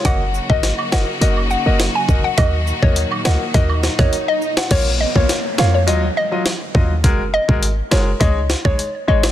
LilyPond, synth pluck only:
\new Staff \with { instrumentName = "Synth pluck" } { \time 4/4 \key ees \minor \tempo 4 = 103 ges''8 r16 ees''16 r8 ges''16 r8. ges''16 r8 aes''16 r16 ges''16 | ees''8 r16 des''16 r8 ges''16 r16 ees''16 r8 des''16 r16 ees''16 r16 ges''16 | des''16 r16 ees''16 des''16 r8 f''16 des''16 r8 ees''16 r4 r16 | r8 ees''16 r8. des''16 r16 ees''16 r8 des''16 r8 ees''16 r16 | }